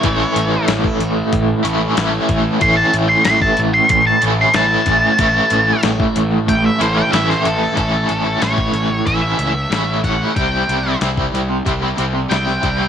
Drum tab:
HH |x-x-x-x-x-x-x-x-|x-x-x-x-x-x-x-x-|x-x-x-x-x-x-x-x-|x-x-x-x-x-x-x-x-|
SD |----o-------o---|----o-------o---|----o-------oo--|----o-------o---|
BD |o----o--o-----o-|o----o--o-----o-|o----o--o-------|o----o--o-----o-|

HH |x-x-x-x-x-x-x-x-|
SD |----o-------oo--|
BD |o----o--o-----o-|